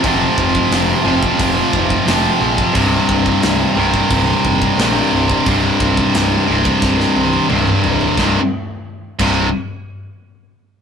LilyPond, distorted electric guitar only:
\new Staff \with { instrumentName = "Distorted electric guitar" } { \clef bass \time 4/4 \key f \mixolydian \tempo 4 = 88 <f, c f>4. <f, c f>4. <f, c f>4 | <c, g, c>4. <c, g, c>4. <c, g, c>4 | <c, g, c>4. <c, g, c>4. <c, g, c>4 | <c, g, c>8 r4 <c, g, c>8 r2 | }